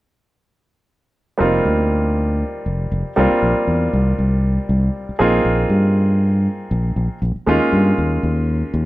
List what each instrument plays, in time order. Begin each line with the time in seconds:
1.38 fingered electric bass F1, grand piano G3 A#3 C4 D#4 F4
1.65 fingered electric bass D2
2.66 fingered electric bass F1
2.92 fingered electric bass F1
3.16 fingered electric bass C2, grand piano G3 A#3 C4 D4 F4
3.31 muted fingered electric bass stroke
3.42 fingered electric bass A#1
3.67 fingered electric bass E2
3.93 fingered electric bass C2
4.19 fingered electric bass C2
4.69 fingered electric bass C2
5.09 muted fingered electric bass stroke
5.19 fingered electric bass A#1, grand piano A#3 C4 D#4 F4 G#4
5.45 fingered electric bass A#1
5.69 fingered electric bass G2
6.71 fingered electric bass A#1
6.96 fingered electric bass A#1
7.22 fingered electric bass A#1
7.36 muted fingered electric bass stroke
7.46 fingered electric bass D#2, grand piano G#3 A#3 C#4 D#4 F4
7.73 fingered electric bass G2
7.98 fingered electric bass D#2
8.23 fingered electric bass D#2
8.74 fingered electric bass D#2